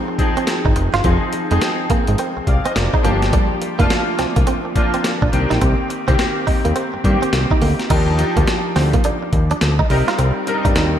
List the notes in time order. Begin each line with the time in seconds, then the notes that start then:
Already playing: F3 C4 D#4 G#4
0.08 muted clean electric guitar stroke
0.18 F3 C4 D#4 G#4, kick, closed hi-hat
0.37 C4, closed hi-hat
0.47 snare, closed hi-hat, cowbell
0.65 G#1 D#4, kick
0.76 F1, muted clean electric guitar stroke, closed hi-hat
0.94 G1 F4, snare, closed hi-hat
1.04 F1 F3 C4 D#4 G#4, kick, closed hi-hat, cowbell
1.33 muted clean electric guitar stroke, closed hi-hat
1.50 F1 F3 G#3 C4 D#4 G#4, closed hi-hat
1.61 muted clean electric guitar stroke, snare, closed hi-hat, cowbell
1.90 G#1 A#3, kick, closed hi-hat
2.07 G#1 G#3, closed hi-hat
2.18 C4, closed hi-hat, cowbell
2.37 C2, muted clean electric guitar stroke
2.47 C2 D5 F5, kick, closed hi-hat
2.65 C4 C5 D#5, closed hi-hat
2.75 F1 A#4 D5, muted clean electric guitar stroke, snare, closed hi-hat, cowbell
2.93 D#4 G#4 C5, kick
3.03 G1 F3 A#3 D4 G4, closed hi-hat
3.22 snare, closed hi-hat
3.33 G3, kick, closed hi-hat, cowbell
3.62 muted clean electric guitar stroke, closed hi-hat
3.79 F1 F3 A3 A#3 D4 F4, kick, closed hi-hat
3.86 A#3
3.90 muted clean electric guitar stroke, snare, closed hi-hat, cowbell
4.19 C2 C4, snare, closed hi-hat
4.36 C2 A#3, kick, closed hi-hat
4.47 C4, closed hi-hat, cowbell
4.65 muted clean electric guitar stroke
4.75 F3 A#3 D4 F4, kick, closed hi-hat
4.94 C4, closed hi-hat
5.04 snare, closed hi-hat, cowbell
5.22 A#1 D4, kick
5.32 C2 D#3 A#3 C4 G4, muted clean electric guitar stroke, closed hi-hat
5.50 A#1 D#4, snare, closed hi-hat
5.61 C2 C4, kick, closed hi-hat, cowbell
5.90 muted clean electric guitar stroke, closed hi-hat
6.07 C2 D#3 A#3 C4 G4, kick, closed hi-hat
6.19 muted clean electric guitar stroke, snare, closed hi-hat, cowbell
6.47 D#2 D#4, kick, open hi-hat
6.65 D#2 A#3, closed hi-hat
6.76 C4, closed hi-hat, cowbell
6.94 G2, muted clean electric guitar stroke
7.04 G2 D#3 A#3 C4 G4, kick, closed hi-hat
7.22 C4, closed hi-hat
7.33 C2, muted clean electric guitar stroke, snare, closed hi-hat, cowbell
7.51 D#4, kick
7.62 D2 A#3, open hi-hat
7.79 snare, closed hi-hat
7.90 D#2 F3 D4 D#4 G4, kick, closed hi-hat, crash, cowbell
8.18 F3 D4 D#4 G4, muted clean electric guitar stroke, closed hi-hat
8.37 D2 A#3, kick, closed hi-hat
8.47 muted clean electric guitar stroke, snare, closed hi-hat, cowbell
8.76 D2 C4, snare, open hi-hat
8.93 A#3, kick, closed hi-hat
9.04 D4, closed hi-hat, cowbell
9.22 muted clean electric guitar stroke
9.33 D#2, kick, closed hi-hat
9.51 D4, closed hi-hat
9.61 D2, snare, closed hi-hat, cowbell
9.79 D#4, kick
9.90 C2 G3 C4 D#4 A#4, muted clean electric guitar stroke, open hi-hat
10.08 F4, snare, closed hi-hat
10.18 C2 C4, closed hi-hat, cowbell
10.47 G3 C4 D4 A#4, muted clean electric guitar stroke, closed hi-hat
10.54 D#4
10.65 G2 D#4, kick, closed hi-hat
10.76 D#2, muted clean electric guitar stroke, snare, closed hi-hat, cowbell